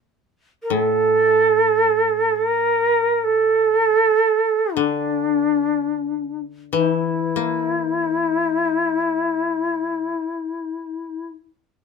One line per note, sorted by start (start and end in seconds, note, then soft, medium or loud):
0.63 0.74 A#4 soft
0.70 4.08 A2 soft
0.70 2.36 A4 medium
2.36 2.47 A4 medium
2.47 3.26 A#4 medium
3.24 4.77 A4 medium
4.76 8.15 D3 soft
4.76 6.40 D4 medium
6.73 10.11 E3 soft
6.73 6.86 D#4 medium
6.86 11.27 E4 medium
7.36 9.88 A#3 soft